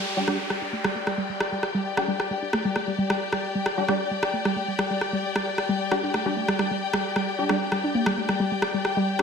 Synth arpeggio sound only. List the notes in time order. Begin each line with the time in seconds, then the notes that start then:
0.28 G3
0.50 G3
0.62 D4
0.73 A3
0.84 G3
0.95 A3
1.07 G3
1.18 G3
1.29 G3
1.52 G3
1.75 G3
2.08 G3
2.31 G3
2.42 D4
2.53 A3
2.65 G3
2.76 A3
2.87 G3
2.98 G3
3.10 G3
3.33 G3
3.55 G3
3.88 G3
4.11 G3
4.23 D4
4.33 A3
4.45 G3
4.56 A3
4.68 G3
4.79 G3
4.90 G3
5.13 G3
5.36 G3
5.69 G3
5.91 G3
6.03 D4
6.14 A3
6.26 G3
6.37 A3
6.48 G3
6.59 G3
6.71 G3
6.93 G3
7.16 G3
7.49 G3
7.72 G3
7.84 D4
7.95 A#3
8.06 G3
8.17 A3
8.29 G3
8.40 G3
8.52 G3
8.74 G3
8.97 G3